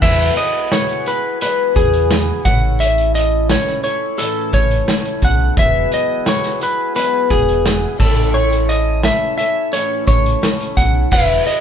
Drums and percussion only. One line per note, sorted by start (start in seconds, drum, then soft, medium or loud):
0.02 kick loud
0.02 crash loud
0.37 closed hi-hat medium
0.72 snare loud
0.72 closed hi-hat medium
0.89 closed hi-hat medium
1.06 closed hi-hat medium
1.41 closed hi-hat loud
1.76 kick medium
1.76 closed hi-hat medium
1.93 closed hi-hat soft
2.11 snare loud
2.11 closed hi-hat loud
2.45 kick loud
2.45 closed hi-hat medium
2.81 closed hi-hat medium
2.98 closed hi-hat soft
3.15 closed hi-hat medium
3.50 snare loud
3.50 closed hi-hat loud
3.67 snare soft
3.84 closed hi-hat medium
4.19 closed hi-hat loud
4.53 kick medium
4.53 closed hi-hat medium
4.71 closed hi-hat soft
4.88 snare loud
4.88 closed hi-hat loud
5.05 closed hi-hat soft
5.22 kick medium
5.22 closed hi-hat medium
5.57 kick loud
5.57 closed hi-hat medium
5.92 closed hi-hat medium
6.26 snare loud
6.26 closed hi-hat medium
6.44 snare soft
6.44 closed hi-hat medium
6.61 closed hi-hat medium
6.96 closed hi-hat loud
7.30 kick medium
7.30 closed hi-hat medium
7.48 closed hi-hat soft
7.66 snare loud
7.66 closed hi-hat medium
8.00 kick loud
8.00 crash medium
8.52 closed hi-hat soft
8.69 closed hi-hat medium
9.03 snare loud
9.03 closed hi-hat loud
9.38 closed hi-hat medium
9.73 closed hi-hat loud
10.08 kick medium
10.08 closed hi-hat medium
10.26 closed hi-hat soft
10.43 snare loud
10.43 closed hi-hat loud
10.60 closed hi-hat medium
10.77 kick medium
10.77 closed hi-hat medium
11.12 kick loud
11.12 crash medium
11.47 closed hi-hat medium